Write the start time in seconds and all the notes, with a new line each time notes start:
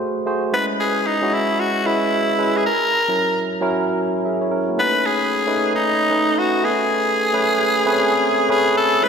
Already playing: A3 F#4 G#4 C5
0.26 A3 F#4 G#4 C5
0.53 G#3 C#4 E4 B4
0.80 G#4
1.07 D#4
1.22 G#3 C#4 E4 F#4
1.34 E4
1.60 F#4
1.85 G#3 C#4 E4 B4
2.38 G#3 C#4 E4 B4
2.57 G#4
2.67 A#4
3.08 F#3 C#4 E4 A#4
3.61 F#3 C#4 E4 A#4
4.25 G#4 E5
4.41 E4 C#5
4.51 C#4 A#4
4.68 A#3 F#4
4.77 A3 C#4 D#4 B4
5.06 G#4
5.47 A3 C#4 D#4 B4
5.75 D#4
6.10 A3 C#4 D#4 B4
6.39 F#4
6.63 A3 B3 G#4 B4
6.70 C#4
7.33 A3 C#4 G#4 B4
7.86 A3 C4 G#4 B4
7.93 C#4
8.49 A3 C#4 G#4 B4
8.78 A4
9.02 G#3 C#4 E4 B4